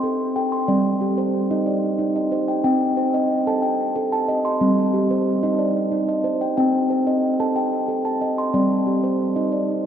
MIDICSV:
0, 0, Header, 1, 2, 480
1, 0, Start_track
1, 0, Tempo, 655022
1, 505, Time_signature, 3, 2, 24, 8
1, 7226, End_track
2, 0, Start_track
2, 0, Title_t, "Steel tongue drum"
2, 0, Program_c, 0, 114
2, 0, Note_on_c, 0, 84, 53
2, 25, Note_on_c, 0, 69, 67
2, 255, Note_off_c, 0, 69, 0
2, 262, Note_on_c, 0, 79, 56
2, 264, Note_off_c, 0, 84, 0
2, 264, Note_on_c, 0, 69, 62
2, 383, Note_on_c, 0, 84, 50
2, 499, Note_on_c, 0, 55, 77
2, 499, Note_on_c, 0, 74, 62
2, 504, Note_off_c, 0, 69, 0
2, 504, Note_on_c, 0, 60, 70
2, 625, Note_off_c, 0, 84, 0
2, 626, Note_off_c, 0, 79, 0
2, 740, Note_on_c, 0, 67, 60
2, 741, Note_off_c, 0, 55, 0
2, 863, Note_on_c, 0, 72, 70
2, 864, Note_off_c, 0, 74, 0
2, 1104, Note_off_c, 0, 72, 0
2, 1104, Note_on_c, 0, 63, 67
2, 1105, Note_off_c, 0, 67, 0
2, 1105, Note_on_c, 0, 75, 57
2, 1217, Note_on_c, 0, 74, 53
2, 1345, Note_off_c, 0, 63, 0
2, 1456, Note_on_c, 0, 63, 71
2, 1461, Note_off_c, 0, 75, 0
2, 1582, Note_on_c, 0, 75, 57
2, 1583, Note_off_c, 0, 74, 0
2, 1698, Note_on_c, 0, 72, 72
2, 1699, Note_off_c, 0, 63, 0
2, 1819, Note_on_c, 0, 79, 53
2, 1912, Note_off_c, 0, 60, 0
2, 1928, Note_off_c, 0, 79, 0
2, 1935, Note_on_c, 0, 60, 78
2, 1937, Note_on_c, 0, 79, 67
2, 1939, Note_off_c, 0, 72, 0
2, 1939, Note_off_c, 0, 75, 0
2, 2177, Note_on_c, 0, 72, 63
2, 2178, Note_off_c, 0, 60, 0
2, 2302, Note_off_c, 0, 79, 0
2, 2302, Note_on_c, 0, 75, 70
2, 2542, Note_off_c, 0, 72, 0
2, 2542, Note_on_c, 0, 69, 72
2, 2543, Note_off_c, 0, 75, 0
2, 2544, Note_on_c, 0, 81, 60
2, 2655, Note_on_c, 0, 79, 58
2, 2783, Note_off_c, 0, 69, 0
2, 2900, Note_off_c, 0, 81, 0
2, 2900, Note_on_c, 0, 69, 78
2, 3021, Note_off_c, 0, 79, 0
2, 3023, Note_on_c, 0, 81, 59
2, 3139, Note_on_c, 0, 75, 76
2, 3140, Note_off_c, 0, 69, 0
2, 3261, Note_on_c, 0, 84, 58
2, 3375, Note_on_c, 0, 60, 69
2, 3377, Note_on_c, 0, 55, 81
2, 3380, Note_off_c, 0, 75, 0
2, 3380, Note_off_c, 0, 81, 0
2, 3502, Note_off_c, 0, 84, 0
2, 3616, Note_on_c, 0, 67, 60
2, 3619, Note_off_c, 0, 55, 0
2, 3741, Note_on_c, 0, 72, 70
2, 3979, Note_on_c, 0, 63, 68
2, 3979, Note_on_c, 0, 75, 60
2, 3982, Note_off_c, 0, 67, 0
2, 3983, Note_off_c, 0, 72, 0
2, 4094, Note_on_c, 0, 74, 54
2, 4222, Note_off_c, 0, 63, 0
2, 4335, Note_on_c, 0, 63, 68
2, 4338, Note_off_c, 0, 75, 0
2, 4460, Note_on_c, 0, 75, 58
2, 4461, Note_off_c, 0, 74, 0
2, 4574, Note_on_c, 0, 72, 71
2, 4578, Note_off_c, 0, 63, 0
2, 4699, Note_on_c, 0, 79, 57
2, 4790, Note_off_c, 0, 60, 0
2, 4809, Note_off_c, 0, 79, 0
2, 4817, Note_on_c, 0, 79, 67
2, 4818, Note_off_c, 0, 72, 0
2, 4819, Note_off_c, 0, 75, 0
2, 4819, Note_on_c, 0, 60, 79
2, 5058, Note_on_c, 0, 72, 59
2, 5061, Note_off_c, 0, 60, 0
2, 5180, Note_on_c, 0, 75, 71
2, 5184, Note_off_c, 0, 79, 0
2, 5421, Note_on_c, 0, 69, 66
2, 5422, Note_on_c, 0, 81, 55
2, 5423, Note_off_c, 0, 75, 0
2, 5424, Note_off_c, 0, 72, 0
2, 5538, Note_on_c, 0, 79, 58
2, 5664, Note_off_c, 0, 69, 0
2, 5778, Note_on_c, 0, 69, 65
2, 5781, Note_off_c, 0, 81, 0
2, 5899, Note_on_c, 0, 81, 55
2, 5905, Note_off_c, 0, 79, 0
2, 6019, Note_on_c, 0, 75, 68
2, 6021, Note_off_c, 0, 69, 0
2, 6143, Note_on_c, 0, 84, 53
2, 6257, Note_on_c, 0, 55, 72
2, 6257, Note_on_c, 0, 60, 69
2, 6258, Note_on_c, 0, 74, 68
2, 6260, Note_off_c, 0, 81, 0
2, 6262, Note_off_c, 0, 75, 0
2, 6386, Note_off_c, 0, 84, 0
2, 6499, Note_on_c, 0, 67, 57
2, 6501, Note_off_c, 0, 55, 0
2, 6622, Note_on_c, 0, 72, 65
2, 6625, Note_off_c, 0, 74, 0
2, 6857, Note_on_c, 0, 75, 54
2, 6858, Note_on_c, 0, 63, 72
2, 6866, Note_off_c, 0, 67, 0
2, 6866, Note_off_c, 0, 72, 0
2, 6978, Note_on_c, 0, 74, 54
2, 7104, Note_off_c, 0, 63, 0
2, 7220, Note_off_c, 0, 75, 0
2, 7226, Note_off_c, 0, 60, 0
2, 7226, Note_off_c, 0, 74, 0
2, 7226, End_track
0, 0, End_of_file